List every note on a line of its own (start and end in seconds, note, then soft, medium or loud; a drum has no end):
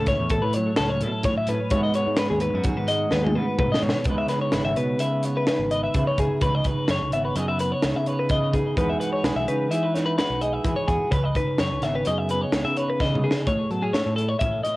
0.00 0.15 C#2 medium
0.00 0.32 A2 medium
0.00 0.79 C#4 medium
0.00 1.70 A4 medium
0.07 1.03 E4 medium
0.07 0.32 C#5 medium
0.07 kick medium
0.07 snare soft
0.07 closed hi-hat medium
0.20 0.38 E2 medium
0.30 1.26 A2 medium
0.30 0.43 A4 medium
0.30 kick loud
0.30 closed hi-hat medium
0.42 0.70 A2 medium
0.42 0.54 B4 medium
0.53 1.73 F#3 medium
0.53 0.77 C#5 medium
0.53 closed hi-hat medium
0.76 1.03 C#2 loud
0.76 0.90 A4 medium
0.76 snare loud
0.76 closed hi-hat medium
0.81 1.50 C#4 medium
0.90 1.02 C#5 medium
1.01 1.10 B2 medium
1.01 1.25 A4 medium
1.01 closed hi-hat medium
1.05 1.71 E4 medium
1.23 1.33 A2 medium
1.23 1.70 A2 medium
1.23 1.37 C#5 medium
1.23 kick loud
1.23 snare soft
1.23 closed hi-hat medium
1.38 1.49 E5 medium
1.47 1.58 A2 medium
1.47 1.72 B4 medium
1.47 closed hi-hat medium
1.52 1.71 C#4 medium
1.70 1.89 G#2 medium
1.70 3.60 G#2 medium
1.70 2.89 G#3 medium
1.70 1.83 C#5 medium
1.70 kick loud
1.70 closed hi-hat medium
1.75 1.96 B3 medium
1.75 2.42 F#4 medium
1.75 2.18 B4 medium
1.83 1.95 D#5 medium
1.94 3.12 B3 medium
1.94 2.19 C#5 medium
1.94 closed hi-hat medium
2.07 2.16 G#2 medium
2.17 2.30 B4 medium
2.17 4.04 B4 medium
2.17 snare loud
2.17 closed hi-hat loud
2.30 2.49 D#2 medium
2.30 2.41 G#4 medium
2.40 2.55 D#4 medium
2.40 2.65 B4 medium
2.40 closed hi-hat medium
2.53 2.72 F#2 medium
2.53 3.36 F#4 medium
2.64 4.04 D#3 medium
2.64 2.77 G#4 medium
2.64 kick loud
2.64 closed hi-hat medium
2.77 3.05 G#2 medium
2.77 2.89 B4 medium
2.88 4.04 G#3 medium
2.88 3.12 D#5 medium
2.88 closed hi-hat medium
3.11 3.37 D#2 loud
3.11 4.09 B3 medium
3.11 3.24 B4 medium
3.11 snare medium
3.24 3.35 G#4 medium
3.24 high tom medium
3.35 3.45 C#3 medium
3.35 4.04 F#4 medium
3.35 3.58 B4 medium
3.59 3.68 G#2 medium
3.59 3.83 A2 medium
3.59 3.71 B4 medium
3.59 kick loud
3.59 mid tom medium
3.72 3.83 D#5 medium
3.72 snare medium
3.82 3.92 G#2 medium
3.82 4.07 B2 medium
3.82 4.06 C#5 medium
3.89 snare medium
4.04 4.24 C#2 medium
4.04 4.18 B4 medium
4.04 kick loud
4.04 closed hi-hat medium
4.09 5.95 C#3 medium
4.09 7.59 G#3 medium
4.09 4.78 B3 medium
4.09 4.32 D#4 medium
4.09 4.56 B4 medium
4.18 4.29 E5 medium
4.28 5.50 D#4 medium
4.28 4.41 B4 medium
4.28 snare soft
4.28 closed hi-hat medium
4.41 4.54 C#5 medium
4.52 4.62 G#1 medium
4.52 4.64 B4 medium
4.52 snare loud
4.52 closed hi-hat medium
4.56 5.02 C#5 medium
4.64 4.74 G#1 medium
4.64 4.77 E5 medium
4.76 5.00 B2 medium
4.76 5.26 B3 medium
4.76 5.00 B4 medium
4.76 closed hi-hat medium
4.99 5.46 C#3 medium
4.99 5.74 B4 medium
4.99 5.25 E5 medium
4.99 closed hi-hat medium
5.23 7.14 B3 medium
5.23 5.36 C#5 medium
5.23 closed hi-hat medium
5.37 5.47 B4 medium
5.47 6.20 D#4 medium
5.47 5.71 B4 medium
5.47 snare loud
5.47 closed hi-hat medium
5.59 5.86 G#1 medium
5.71 5.96 B4 medium
5.71 5.83 D#5 medium
5.71 closed hi-hat medium
5.83 6.07 E5 medium
5.94 6.04 C#3 medium
5.94 6.42 C#3 medium
5.94 6.44 B4 medium
5.94 kick loud
5.94 closed hi-hat medium
6.07 6.18 C#5 medium
6.18 6.27 C#2 medium
6.18 6.69 D#4 medium
6.18 6.42 G#4 medium
6.18 kick medium
6.18 closed hi-hat medium
6.41 6.60 C#2 medium
6.41 8.30 C#3 medium
6.41 6.55 B4 medium
6.41 6.92 B4 medium
6.41 kick loud
6.41 closed hi-hat medium
6.55 6.67 D#5 medium
6.64 6.89 B4 medium
6.64 kick medium
6.64 closed hi-hat medium
6.69 7.85 D#4 medium
6.88 6.98 F#2 medium
6.88 7.13 C#5 medium
6.88 snare loud
6.88 closed hi-hat medium
6.92 7.37 C#5 medium
7.01 7.12 C#2 medium
7.12 7.31 G#1 medium
7.12 7.62 B3 medium
7.12 7.24 E5 medium
7.12 closed hi-hat medium
7.25 7.36 B4 medium
7.36 7.72 F#2 medium
7.36 7.49 G#4 medium
7.36 7.48 D#5 medium
7.36 closed hi-hat medium
7.48 8.07 B4 soft
7.48 7.60 E5 medium
7.59 8.78 B3 medium
7.59 7.72 B4 medium
7.59 closed hi-hat medium
7.72 7.96 C#5 medium
7.82 7.93 C#2 medium
7.82 8.54 D#4 medium
7.82 snare loud
7.82 closed hi-hat medium
7.95 8.59 C#3 medium
7.95 8.07 E5 medium
8.06 8.31 B4 medium
8.06 8.19 C#5 medium
8.06 closed hi-hat medium
8.19 8.30 B4 medium
8.29 8.77 C#3 medium
8.29 8.80 B4 medium
8.29 8.54 D#5 medium
8.29 kick loud
8.29 closed hi-hat medium
8.53 8.79 D#4 medium
8.53 8.77 G#4 medium
8.53 kick medium
8.53 closed hi-hat medium
8.77 8.95 E2 medium
8.77 10.64 E3 medium
8.77 12.28 G#3 medium
8.77 9.49 D#4 medium
8.77 9.01 F#4 medium
8.77 8.89 B4 medium
8.77 kick loud
8.77 closed hi-hat medium
8.81 9.25 G#4 medium
8.90 9.00 E5 medium
9.00 10.18 F#4 medium
9.00 9.12 B4 medium
9.00 closed hi-hat medium
9.13 9.25 C#5 medium
9.24 9.33 B1 medium
9.24 9.71 G#4 medium
9.24 9.36 B4 medium
9.24 snare loud
9.24 closed hi-hat medium
9.36 9.45 B1 medium
9.36 9.48 E5 medium
9.48 9.72 C#3 medium
9.48 9.94 D#4 medium
9.48 9.72 B4 medium
9.48 closed hi-hat medium
9.71 10.18 E3 medium
9.71 9.83 G#4 medium
9.71 9.95 E5 medium
9.71 closed hi-hat medium
9.83 10.41 B4 medium
9.94 11.09 D#4 medium
9.94 10.05 C#5 medium
9.94 snare soft
9.94 closed hi-hat medium
10.06 10.17 B4 medium
10.18 10.87 F#4 medium
10.18 10.41 B4 medium
10.18 snare loud
10.18 closed hi-hat medium
10.30 10.57 B1 medium
10.41 10.65 G#4 medium
10.41 10.53 D#5 medium
10.41 closed hi-hat medium
10.53 10.76 E5 medium
10.64 10.74 E3 medium
10.64 11.09 E3 medium
10.64 11.11 G#4 medium
10.64 kick medium
10.64 closed hi-hat medium
10.76 10.88 C#5 medium
10.88 10.98 E2 medium
10.88 11.09 F#4 medium
10.88 11.11 G#4 medium
10.88 kick medium
10.88 closed hi-hat medium
11.10 11.30 C#2 medium
11.10 13.00 C#3 medium
11.10 11.24 B4 medium
11.10 11.59 B4 medium
11.10 kick loud
11.10 closed hi-hat medium
11.24 11.36 D#5 medium
11.35 12.54 D#4 medium
11.35 11.60 B4 medium
11.35 kick medium
11.35 closed hi-hat medium
11.58 11.69 F#2 medium
11.58 11.83 C#5 medium
11.58 12.07 C#5 medium
11.58 snare loud
11.58 closed hi-hat medium
11.72 11.84 C#2 medium
11.82 12.02 G#1 medium
11.82 12.31 B3 medium
11.82 11.95 E5 medium
11.82 snare soft
11.82 closed hi-hat medium
11.95 12.07 B4 medium
12.05 12.44 F#2 medium
12.05 12.78 G#4 medium
12.05 12.18 D#5 medium
12.05 closed hi-hat medium
12.18 12.30 E5 medium
12.29 12.41 B4 medium
12.29 closed hi-hat medium
12.33 13.49 B3 medium
12.41 12.64 C#5 medium
12.52 12.62 C#2 medium
12.52 13.24 D#4 medium
12.52 snare loud
12.52 closed hi-hat medium
12.64 13.29 C#3 medium
12.64 12.77 E5 medium
12.77 13.01 B4 medium
12.77 12.89 C#5 medium
12.77 closed hi-hat medium
12.90 13.01 B4 medium
13.00 13.48 C#3 medium
13.00 13.46 B4 medium
13.00 13.25 D#5 medium
13.00 kick loud
13.00 snare medium
13.15 mid tom medium
13.24 13.48 D#4 medium
13.24 13.48 G#4 medium
13.31 snare loud
13.47 14.77 A2 medium
13.47 13.66 A2 medium
13.47 13.71 C#5 medium
13.47 kick medium
13.47 closed hi-hat medium
13.70 13.89 F#3 medium
13.70 13.81 B3 medium
13.70 13.83 A4 medium
13.70 closed hi-hat medium
13.81 14.41 C#4 soft
13.81 13.95 G#4 medium
13.93 14.03 A2 medium
13.93 14.77 A4 medium
13.93 14.16 C#5 medium
13.93 snare loud
13.93 closed hi-hat medium
14.06 14.34 A2 medium
14.16 14.66 E4 medium
14.16 14.28 A4 medium
14.16 closed hi-hat medium
14.28 14.39 C#5 medium
14.39 14.60 A2 medium
14.39 14.77 C#4 medium
14.39 14.63 E5 medium
14.39 kick medium
14.39 closed hi-hat medium
14.63 14.77 E4 medium
14.63 14.76 D#5 medium
14.63 closed hi-hat medium